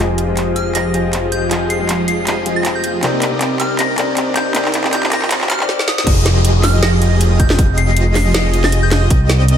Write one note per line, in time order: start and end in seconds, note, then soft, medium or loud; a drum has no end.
0.00 3.01 F1 medium
0.00 0.25 F3 medium
0.00 0.73 F3 medium
0.00 0.26 C4 medium
0.00 0.73 F4 medium
0.00 0.26 G4 medium
0.00 0.73 G4 medium
0.00 0.26 G#4 medium
0.00 0.73 G#4 medium
0.00 0.26 D#5 loud
0.00 0.73 D#5 loud
0.00 riser medium
0.18 closed hi-hat medium
0.27 0.91 F3 medium
0.27 0.93 G#3 medium
0.27 0.92 C4 medium
0.27 0.92 G5 medium
0.31 0.93 D#5 medium
0.37 clap soft
0.37 closed hi-hat medium
0.56 0.71 F6 medium
0.56 closed hi-hat medium
0.75 0.92 F3 medium
0.75 0.92 F4 medium
0.75 0.92 G4 medium
0.75 0.92 G#4 medium
0.75 0.92 D#5 loud
0.75 0.90 A#6 medium
0.75 clap medium
0.75 closed hi-hat medium
0.93 1.00 F3 medium
0.93 1.49 F3 medium
0.93 1.00 C4 medium
0.93 1.49 F4 medium
0.93 1.00 G4 medium
0.93 1.49 G4 medium
0.93 1.49 G#4 medium
0.93 1.01 G#4 medium
0.93 1.49 D#5 medium
0.93 1.01 D#5 loud
0.93 closed hi-hat medium
1.13 clap soft
1.13 closed hi-hat medium
1.32 1.47 G6 medium
1.32 closed hi-hat medium
1.50 1.77 F3 loud
1.50 2.25 F3 loud
1.50 1.78 C4 medium
1.50 2.25 F4 medium
1.50 1.78 G4 medium
1.50 2.25 G4 medium
1.50 2.25 G#4 medium
1.50 1.78 G#4 medium
1.50 2.25 D#5 loud
1.50 1.78 D#5 loud
1.50 clap medium
1.50 closed hi-hat medium
1.70 1.85 C7 medium
1.70 closed hi-hat medium
1.78 2.43 F3 medium
1.78 2.44 G#3 medium
1.78 2.43 C4 medium
1.78 2.45 D#5 medium
1.78 2.44 G5 medium
1.89 clap medium
1.89 closed hi-hat medium
2.08 2.37 C7 medium
2.08 closed hi-hat medium
2.27 2.44 F3 medium
2.27 2.44 F4 medium
2.27 2.44 G4 medium
2.27 2.44 G#4 medium
2.27 2.44 D#5 loud
2.27 clap medium
2.27 closed hi-hat medium
2.45 2.52 F3 medium
2.45 3.01 F3 medium
2.45 2.52 C4 medium
2.45 3.01 F4 medium
2.45 2.52 G4 medium
2.45 3.01 G4 medium
2.45 3.01 G#4 medium
2.45 2.52 G#4 medium
2.45 3.01 D#5 medium
2.45 2.53 D#5 loud
2.45 closed hi-hat medium
2.56 2.70 A#6 medium
2.65 clap medium
2.65 closed hi-hat medium
2.75 2.81 G6 medium
2.84 2.90 G6 medium
2.84 closed hi-hat medium
3.02 5.69 C2 medium
3.02 3.29 C3 medium
3.02 3.30 C4 medium
3.02 3.77 C4 medium
3.02 3.30 D#4 medium
3.02 3.77 G4 medium
3.02 3.77 A#4 medium
3.02 3.30 A#4 medium
3.02 3.77 D5 medium
3.02 3.30 D5 loud
3.02 3.77 D#5 loud
3.02 clap medium
3.02 closed hi-hat medium
3.22 clap medium
3.22 closed hi-hat medium
3.30 3.95 C3 medium
3.30 3.95 C4 medium
3.30 3.96 D#4 medium
3.30 3.96 A#4 medium
3.30 3.97 D6 medium
3.41 clap medium
3.41 closed hi-hat medium
3.60 3.75 F6 medium
3.60 clap medium
3.60 closed hi-hat medium
3.79 3.96 C4 medium
3.79 3.96 G4 medium
3.79 3.96 A#4 medium
3.79 3.96 D5 medium
3.79 3.96 D#5 loud
3.79 3.94 A#6 medium
3.79 clap medium
3.79 closed hi-hat medium
3.97 4.04 C3 medium
3.97 4.04 C4 medium
3.97 4.53 C4 medium
3.97 4.04 D#4 medium
3.97 4.53 G4 medium
3.97 4.53 A#4 medium
3.97 4.04 A#4 medium
3.97 4.53 D5 medium
3.97 4.05 D5 loud
3.97 4.53 D#5 medium
3.97 clap medium
3.97 closed hi-hat medium
4.17 clap medium
4.17 closed hi-hat medium
4.35 4.50 G6 medium
4.35 clap medium
4.35 closed hi-hat medium
4.54 4.81 C3 medium
4.54 4.82 C4 medium
4.54 5.29 C4 loud
4.54 4.82 D#4 medium
4.54 5.29 G4 medium
4.54 5.29 A#4 medium
4.54 4.82 A#4 medium
4.54 5.29 D5 medium
4.54 4.82 D5 loud
4.54 5.29 D#5 loud
4.54 clap medium
4.54 closed hi-hat medium
4.65 clap medium
4.74 clap medium
4.74 closed hi-hat medium
4.82 5.47 C3 medium
4.82 5.47 C4 medium
4.82 5.48 D#4 medium
4.82 5.48 A#4 medium
4.82 5.49 D6 medium
4.82 clap medium
4.93 5.08 G6 medium
4.93 clap medium
4.93 closed hi-hat medium
5.03 clap medium
5.11 5.26 A#6 medium
5.11 clap medium
5.11 closed hi-hat medium
5.22 clap medium
5.31 5.48 C4 medium
5.31 5.48 G4 medium
5.31 5.48 A#4 medium
5.31 5.48 D5 medium
5.31 5.48 D#5 loud
5.31 clap loud
5.31 closed hi-hat medium
5.41 clap medium
5.50 5.64 F6 loud
5.50 clap loud
5.50 closed hi-hat medium
5.59 5.68 C3 medium
5.59 5.68 C4 medium
5.59 5.69 D#4 medium
5.59 5.69 A#4 medium
5.59 5.69 D5 loud
5.59 clap medium
5.69 snare medium
5.79 snare medium
5.88 5.94 D#6 medium
5.88 snare medium
5.98 6.04 D#6 medium
5.98 snare medium
6.07 9.09 F1 medium
6.07 6.81 F3 loud
6.07 6.81 F4 medium
6.07 6.81 G4 medium
6.07 6.81 G#4 medium
6.07 6.81 D#5 loud
6.07 kick loud
6.07 closed hi-hat medium
6.07 crash loud
6.07 downlifter medium
6.26 snare medium
6.26 closed hi-hat medium
6.45 closed hi-hat medium
6.64 6.78 F6 medium
6.64 snare medium
6.64 open hi-hat medium
6.82 7.00 F3 medium
6.82 7.00 F4 medium
6.82 7.00 G4 medium
6.82 7.00 G#4 medium
6.82 7.00 D#5 loud
6.82 6.98 A#6 medium
6.82 snare loud
6.82 closed hi-hat medium
7.02 7.57 F3 medium
7.02 7.57 F4 medium
7.02 7.57 G4 medium
7.02 7.57 G#4 medium
7.02 7.57 D#5 medium
7.02 closed hi-hat medium
7.21 closed hi-hat medium
7.39 7.54 G6 medium
7.39 kick loud
7.39 closed hi-hat medium
7.50 snare medium
7.58 8.33 F3 loud
7.58 8.33 F4 medium
7.58 8.33 G4 medium
7.58 8.33 G#4 medium
7.58 8.32 D#5 loud
7.58 8.33 D#5 loud
7.58 kick loud
7.58 closed hi-hat medium
7.77 7.92 C7 medium
7.77 closed hi-hat medium
7.97 closed hi-hat medium
8.15 8.45 C7 medium
8.15 snare medium
8.15 open hi-hat medium
8.34 8.52 F3 loud
8.34 8.52 F4 medium
8.34 8.52 G4 medium
8.34 8.52 G#4 medium
8.34 8.52 D#5 loud
8.34 snare loud
8.34 closed hi-hat medium
8.53 9.09 F3 medium
8.53 9.08 F4 medium
8.53 9.09 G4 medium
8.53 9.08 G#4 medium
8.53 9.08 D#5 medium
8.53 9.09 D#5 medium
8.53 closed hi-hat medium
8.64 8.78 A#6 loud
8.64 snare medium
8.72 closed hi-hat medium
8.83 8.88 G6 loud
8.91 8.98 G6 medium
8.91 snare medium
8.91 closed hi-hat medium
9.10 9.58 C2 medium
9.10 9.58 C4 loud
9.10 9.58 G4 medium
9.10 9.58 A#4 medium
9.10 9.58 D5 medium
9.10 9.58 D#5 loud
9.10 kick loud
9.10 closed hi-hat medium
9.29 snare medium
9.29 closed hi-hat medium
9.48 closed hi-hat medium